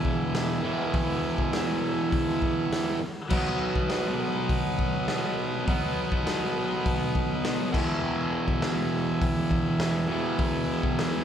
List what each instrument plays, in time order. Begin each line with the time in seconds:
Already playing: distorted electric guitar E2 B2 E3, transistor combo organ G#4 B4 E5
0.05 kick
0.35 snare, open hi-hat
0.62 distorted electric guitar E2 B2 E3
0.94 kick, open hi-hat
1.38 kick
1.53 snare, open hi-hat
2.12 kick, open hi-hat
2.42 kick
2.72 snare, open hi-hat
3.27 distorted electric guitar B2 F#3, transistor combo organ F#4 B4 D#5, kick, crash
3.32 distorted electric guitar B3
3.76 kick
3.90 snare, open hi-hat
4.49 kick, open hi-hat
4.79 kick
5.08 snare, open hi-hat
5.67 distorted electric guitar B2 F#3 B3, kick, open hi-hat
6.12 kick
6.27 snare, open hi-hat
6.86 kick, open hi-hat
7.15 kick
7.45 snare, open hi-hat
7.72 distorted electric guitar E2 B2 E3, transistor combo organ G#4 B4 E5, kick, crash
8.48 kick
8.62 snare, open hi-hat
9.22 kick, open hi-hat
9.51 kick
9.80 snare, open hi-hat
10.08 distorted electric guitar E2 B2 E3
10.38 kick, open hi-hat
10.83 kick
10.99 snare, open hi-hat